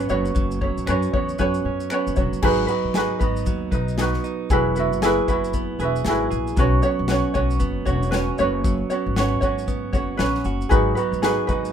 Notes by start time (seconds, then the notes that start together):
Already playing: B3 C#4 B4
0.00 shaker
0.09 F#1 F#3 C#4 F#4 B4 C#5, shaker
0.25 shaker
0.35 F#1 F#3, kick, shaker
0.51 shaker
0.61 F#3 C#4 C#5, kick
0.77 G#1, shaker
0.86 F#2 C#4 F#4 B4 C#5, finger snap, shaker
1.02 shaker
1.13 E2 B3 C#4 F#4 C#5, kick
1.29 shaker
1.39 F#2 F#3 C#4 F#4 B4 C#5, kick, shaker
1.54 shaker
1.65 F#2 C#4
1.80 shaker
1.90 B3 C#4 F#4 B4 C#5, finger snap, shaker
2.07 F#1, shaker
2.16 E1 F#3 C#4 F#4 C#5, kick, shaker
2.32 F#1, shaker
2.42 G#1 F#3 D#4 F#4 G#4 B4, kick, crash
2.67 F#3 D#4 F#4 B4, shaker
2.84 G#1
2.94 D#4 F#4 G#4 B4, snare, shaker
3.19 G#1 B3 D#4 F#4 B4, kick, shaker
3.36 shaker
3.46 D#2 F#3, kick, shaker
3.71 B1 D#4 B4, kick, shaker
3.88 shaker
3.98 B3 D#4 F#4 G#4, snare, shaker
4.02 B4
4.13 snare
4.24 D#4, shaker
4.50 E1 F#3 E4 F#4 G#4 B4, kick, shaker
4.75 B3 F#4 B4, shaker
4.79 E4
4.92 F#1, shaker
5.02 E4 F#4 G#4 B4, snare, shaker
5.28 F#1 E4 F#4 B4, kick, shaker
5.32 E4
5.44 shaker
5.53 B3, kick, shaker
5.79 E1 F#4 G#4 B4, shaker
5.84 E4
5.96 shaker
6.05 G#1 E4 G#4, snare, shaker
6.09 F#4 B4
6.31 A#1 G#4, shaker
6.47 shaker
6.57 B1 F#3 C#4 F#4 B4 C#5, kick, shaker
6.82 B3 C#4 F#4 C#5, shaker
6.99 B1
7.08 C#4 F#4 B4 C#5, snare, shaker
7.34 B1 C#4 F#4 C#5, kick, shaker
7.50 shaker
7.60 F#1 B3, kick, shaker
7.85 E1 C#4 F#4 C#5, kick, shaker
8.03 shaker
8.11 C#4 F#4 B4 C#5, snare, shaker
8.38 F#1 F#3 C#4 F#4 B4 C#5, shaker
8.64 F#3, kick, shaker
8.90 B3 C#4 F#4 C#5, shaker
9.06 G#1
9.16 C#4 F#4 B4 C#5, snare, shaker
9.41 G#1 C#4 F#4 C#5, kick, shaker
9.58 shaker
9.68 B3, kick, shaker
9.93 F#1 C#4 F#4 C#5, kick, shaker
10.17 A#1 C#4 F#4 B4 C#5, snare, shaker
10.35 snare
10.44 F#1 F#4, shaker
10.61 shaker
10.69 G#1 F#3 D#4 F#4 G#4 B4, kick, shaker
10.95 B3 D#4 F#4 B4, shaker
11.12 G#1, shaker
11.22 D#4 F#4 G#4 B4, snare, shaker
11.47 G#1 D#4 F#4 B4, kick, shaker
11.65 shaker